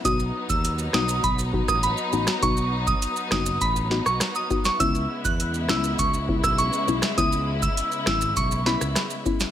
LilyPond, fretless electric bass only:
\new Staff \with { instrumentName = "Fretless electric bass" } { \clef bass \time 4/4 \key cis \minor \tempo 4 = 101 b,,8 r16 dis,8. b,,8 b,,8. a,,8 r16 a,,16 r16 | b,,4 r8 fis,,8 a,,8. b,,16 r4 | cis,8 r16 e,8. cis,8 cis,8. b,,8 r16 b,,16 r16 | cis,4 r8 gis,,8 b,,8. cis,16 r4 | }